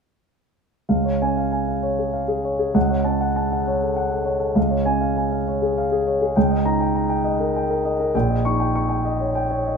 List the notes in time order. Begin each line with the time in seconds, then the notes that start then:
0.89 C#2 F5
1.05 C#5
1.22 C#4 G#5
1.37 F5
1.52 G#5
1.68 F5
1.82 C#5
1.99 G#4
2.13 F5
2.28 G#4
2.44 C#5
2.59 G#4
2.74 C#2 F#5
2.90 C#5
3.04 C#4 A5
3.21 F#5
3.36 A5
3.52 F#5
3.67 C#5
3.82 A4
3.96 F#5
4.11 A4
4.25 C#5
4.40 A4
4.55 C#2 F5
4.70 C#5
4.85 C#4 G#5
5.01 F5
5.17 G#5
5.32 F5
5.47 C#5
5.62 G#4
5.78 F5
5.92 G#4
6.07 C#5
6.22 G#4
6.36 C#2 G5
6.51 D#5
6.65 D#4 A#5
6.80 G5
6.96 A#5
7.09 G5
7.24 D#5
7.40 A#4
7.56 G5
7.70 A#4
7.85 D#5
8.00 A#4
8.15 A#1 G5
8.30 D#5
8.45 D#4 C#6
8.59 G5
8.75 C#6
8.89 G5
9.05 D#5
9.20 C#5
9.35 G5
9.51 C#5
9.67 D#5